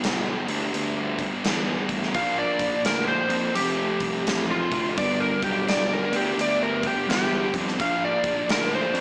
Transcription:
Already playing: G2 D3 G3 B3 D4
0.03 B1, snare, open hi-hat
0.47 D2 G2 D3 G3 B3 D4, open hi-hat
0.74 D2, open hi-hat
1.19 kick, open hi-hat
1.44 E2 G2 D3 G3 B3 D4, snare, open hi-hat
1.89 A1, kick, open hi-hat
2.03 snare
2.14 A#1 A#2 F3 A#3 D4 F5, kick, open hi-hat
2.38 D5
2.59 kick, open hi-hat
2.85 D2 A#4, snare, open hi-hat
3.08 C5
3.28 F2 A#2 F3 A#3 D4, open hi-hat
3.55 F1 F2 C3 F3 A3 C4 G4, open hi-hat
4.00 C2, kick, open hi-hat
4.27 A1, snare, open hi-hat
4.51 F4
4.71 D2 F2 C3 F3 A3 C4, kick, open hi-hat
4.96 G1 G2 D3 G3 B3 D4 D5, kick, open hi-hat
5.20 A#4
5.42 B1 G4, kick, open hi-hat
5.68 B1 D5, snare, open hi-hat
5.93 A#4
6.11 D2 G2 D3 G3 B3 D4, open hi-hat
6.16 G4
6.38 D2 D5, open hi-hat
6.63 A#4
6.83 G4, kick, open hi-hat
7.07 E2 G2 D3 G3 B3 D4 G4, snare, open hi-hat
7.54 F2, kick, open hi-hat
7.68 snare
7.78 A#1 A#2 F3 A#3 F5, kick, open hi-hat
7.82 D4
8.04 D5
8.24 kick, open hi-hat
8.49 D2 A#4, snare, open hi-hat
8.75 C5
8.93 F2 A#2 F3 A#3 D4, open hi-hat

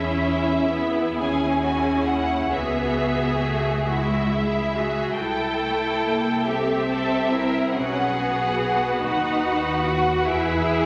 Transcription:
Already playing: E2 C#4 E4 G#4 E5
0.72 B3
1.18 D#2 C#4 G#4 G#5
1.63 F#4 G#5
2.08 E4 F#5
2.51 C#2 B3 F#4 G#4 E5
3.44 A3
3.86 G#3 E4 F#4 E5
4.32 E4 G#4
4.75 F#4 G#4
5.20 C2 E4 A4 G5
5.63 A3
6.06 A#3
6.47 C4 G4 A4 E5
6.89 G4 A4
7.32 E4 A#4
7.74 B1 C#4 F#4 G#4 B4 F#5
8.19 B3
9.03 D#2 D#4 F#4 F#5
9.87 F#4
10.27 E2 E4 G#4 E5

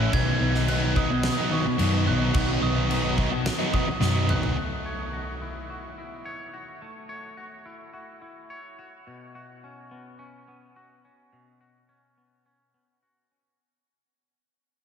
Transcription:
Already playing: A2 E3 A3 C#4 E4 F#6
0.00 A3 C#4
0.12 B1 B2 D#3 F#3 B3 D#4 G#6, kick, crash
0.40 B1 D#3 F#3 B3 D#4
0.55 F#3 B3 D#4, snare
0.66 B2 D#3 F#3 B3 D#4 F#6, crash
0.83 F#3 B3 D#4
0.95 D#3 F#3 B3 D#4 D#6, kick
1.10 muted overdriven electric guitar stroke
1.23 snare, crash
1.37 F#3 B3 D#4
1.51 D#3 F#3 B3 D#4 C#6
1.65 muted overdriven electric guitar stroke
1.78 F#2 B2 D#3 F#3 B3 D#4, crash
2.06 B1 D#3 F#3 B3 D#4 F#6
2.19 F#3 B3 D#4
2.33 B1 B2 D#3 F#3 B3 D#4, kick, crash
2.60 B1 D#3 F#3 B3 D#4 D#6
2.75 F#3 B3 D#4
2.88 B2 D#3 F#3 B3 D#4, crash
3.03 F#3 B3 D#4
3.16 D#3 F#3 B3 D#4, kick
3.31 muted overdriven electric guitar stroke
3.46 snare, crash
3.59 F#3 B3 D#4
3.73 D#3 F#3 B3 D#4 D#6, kick
3.87 muted overdriven electric guitar stroke
4.00 F#2 B2 D#3 F#3 B3 D#4, snare
4.29 B1 D#3 F#3 B3 D#4 F#6, mid tom
4.43 F#3 B3 D#4, floor tom
4.58 A3
4.86 C#5
5.13 F#4
5.42 E4
5.70 F#4
5.98 E4
6.25 C#5
6.53 F#4
6.82 A3
7.09 C#5
7.37 F#4
7.66 E4
7.93 F#4
8.22 E4
8.50 C#5
8.79 F#4
9.07 B2
9.35 F#4
9.64 C#4
9.91 B3
10.19 C#4
10.48 B3
10.76 F#4
11.05 C#4
11.33 B2
11.61 F#4
11.89 C#4
12.18 B3
12.46 C#4
12.74 B3
13.03 F#4
13.32 C#4

